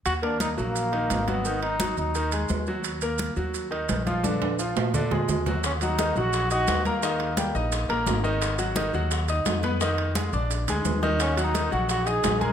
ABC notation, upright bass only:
X:1
M:4/4
L:1/8
Q:1/4=172
K:Ebm
V:1 name="Upright bass" clef=bass
E,,3 B,,,3 A,,,2- | A,,,3 E,,3 E,,2- | E,,3 E,,3 B,,,2- | B,,,3 B,,3 E,,2- |
E,,3 B,,,3 E,,2- | E,,3 B,,,2 B,,, A,,,2- | A,,,3 E,,3 F,,2- | F,,3 B,,,2 =D,, E,,2- |
E,,3 B,,,3 B,,,2 |]